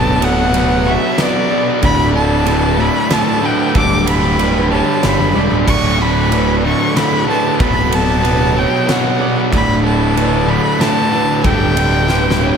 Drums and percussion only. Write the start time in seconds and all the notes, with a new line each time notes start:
0.22 ride
0.54 ride
1.18 snare, ride
1.83 kick, ride
2.46 ride
3.11 snare, ride
3.75 kick, ride
4.07 ride
4.39 ride
5.03 snare, ride
5.68 kick, crash
6.32 ride
6.97 snare, ride
7.60 kick, ride
7.92 ride
8.25 ride
8.89 snare, ride
9.53 kick, ride
10.17 ride
10.81 snare, ride
11.44 kick, ride
11.77 ride
12.09 snare
12.30 snare